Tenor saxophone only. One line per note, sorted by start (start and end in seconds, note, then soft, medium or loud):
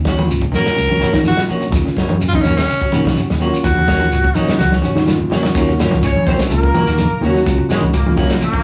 0.55 1.22 A#4 loud
1.28 1.41 F#4 medium
2.28 2.37 F4 medium
2.35 2.43 D#4 medium
2.42 2.56 C#4 medium
2.57 3.01 C#4 loud
3.64 4.37 F#4 loud
4.35 4.58 D#4 medium
4.59 4.73 F#4 medium